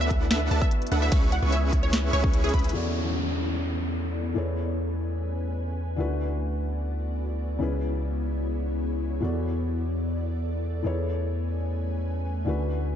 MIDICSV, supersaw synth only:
0, 0, Header, 1, 2, 480
1, 0, Start_track
1, 0, Tempo, 405405
1, 1324, Time_signature, 4, 2, 24, 8
1, 15340, End_track
2, 0, Start_track
2, 0, Title_t, "Supersaw synth"
2, 0, Program_c, 0, 81
2, 0, Note_on_c, 0, 62, 91
2, 0, Note_on_c, 0, 69, 87
2, 0, Note_on_c, 0, 71, 85
2, 0, Note_on_c, 0, 76, 81
2, 0, Note_on_c, 0, 78, 102
2, 576, Note_off_c, 0, 62, 0
2, 576, Note_off_c, 0, 69, 0
2, 576, Note_off_c, 0, 71, 0
2, 576, Note_off_c, 0, 76, 0
2, 576, Note_off_c, 0, 78, 0
2, 605, Note_on_c, 0, 62, 81
2, 605, Note_on_c, 0, 69, 72
2, 605, Note_on_c, 0, 81, 90
2, 606, Note_on_c, 0, 71, 73
2, 606, Note_on_c, 0, 76, 75
2, 750, Note_off_c, 0, 62, 0
2, 750, Note_off_c, 0, 69, 0
2, 750, Note_off_c, 0, 71, 0
2, 750, Note_off_c, 0, 76, 0
2, 750, Note_off_c, 0, 81, 0
2, 1084, Note_on_c, 0, 62, 75
2, 1084, Note_on_c, 0, 71, 69
2, 1084, Note_on_c, 0, 76, 70
2, 1085, Note_on_c, 0, 69, 69
2, 1085, Note_on_c, 0, 78, 82
2, 1296, Note_off_c, 0, 62, 0
2, 1296, Note_off_c, 0, 71, 0
2, 1296, Note_off_c, 0, 76, 0
2, 1297, Note_off_c, 0, 69, 0
2, 1297, Note_off_c, 0, 78, 0
2, 1325, Note_on_c, 0, 61, 87
2, 1325, Note_on_c, 0, 68, 74
2, 1325, Note_on_c, 0, 71, 79
2, 1325, Note_on_c, 0, 76, 82
2, 1325, Note_on_c, 0, 85, 92
2, 1552, Note_off_c, 0, 61, 0
2, 1552, Note_off_c, 0, 68, 0
2, 1552, Note_off_c, 0, 71, 0
2, 1552, Note_off_c, 0, 76, 0
2, 1552, Note_off_c, 0, 85, 0
2, 1690, Note_on_c, 0, 61, 100
2, 1690, Note_on_c, 0, 71, 89
2, 1690, Note_on_c, 0, 76, 89
2, 1690, Note_on_c, 0, 85, 109
2, 1691, Note_on_c, 0, 68, 86
2, 2502, Note_off_c, 0, 61, 0
2, 2502, Note_off_c, 0, 68, 0
2, 2502, Note_off_c, 0, 71, 0
2, 2502, Note_off_c, 0, 76, 0
2, 2502, Note_off_c, 0, 85, 0
2, 2525, Note_on_c, 0, 61, 96
2, 2525, Note_on_c, 0, 68, 85
2, 2525, Note_on_c, 0, 85, 105
2, 2526, Note_on_c, 0, 71, 87
2, 2526, Note_on_c, 0, 76, 84
2, 2977, Note_off_c, 0, 61, 0
2, 2977, Note_off_c, 0, 68, 0
2, 2977, Note_off_c, 0, 71, 0
2, 2977, Note_off_c, 0, 76, 0
2, 2977, Note_off_c, 0, 85, 0
2, 3005, Note_on_c, 0, 68, 88
2, 3005, Note_on_c, 0, 71, 85
2, 3006, Note_on_c, 0, 83, 98
2, 3217, Note_off_c, 0, 68, 0
2, 3217, Note_off_c, 0, 71, 0
2, 3217, Note_off_c, 0, 83, 0
2, 15340, End_track
0, 0, End_of_file